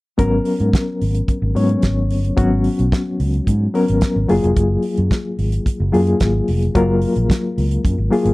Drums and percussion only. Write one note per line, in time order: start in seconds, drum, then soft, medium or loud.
0.19 kick loud
0.19 closed hi-hat medium
0.45 open hi-hat medium
0.60 closed hi-hat soft
0.73 kick loud
0.73 snare loud
0.73 closed hi-hat medium
1.01 open hi-hat medium
1.15 closed hi-hat soft
1.28 kick medium
1.28 closed hi-hat medium
1.56 open hi-hat medium
1.69 closed hi-hat soft
1.82 kick medium
1.82 snare medium
1.82 closed hi-hat medium
2.10 open hi-hat medium
2.25 closed hi-hat soft
2.38 kick loud
2.38 closed hi-hat medium
2.64 open hi-hat medium
2.79 closed hi-hat soft
2.92 kick loud
2.92 snare loud
2.92 closed hi-hat medium
3.20 open hi-hat medium
3.34 closed hi-hat soft
3.47 kick medium
3.47 closed hi-hat medium
3.75 open hi-hat medium
3.88 closed hi-hat soft
4.01 kick medium
4.01 snare medium
4.01 closed hi-hat medium
4.29 open hi-hat medium
4.44 closed hi-hat soft
4.56 kick medium
4.56 closed hi-hat medium
4.83 open hi-hat medium
4.97 closed hi-hat soft
5.11 kick loud
5.11 snare loud
5.11 closed hi-hat medium
5.39 open hi-hat medium
5.52 closed hi-hat soft
5.66 kick medium
5.66 closed hi-hat medium
5.94 open hi-hat medium
6.07 closed hi-hat soft
6.20 kick medium
6.20 snare medium
6.20 closed hi-hat medium
6.48 open hi-hat medium
6.62 closed hi-hat soft
6.75 kick loud
6.75 closed hi-hat soft
7.02 open hi-hat medium
7.16 closed hi-hat soft
7.30 kick loud
7.30 snare loud
7.30 closed hi-hat medium
7.58 open hi-hat medium
7.71 closed hi-hat soft
7.85 kick medium
7.85 closed hi-hat medium
8.13 open hi-hat medium
8.26 closed hi-hat medium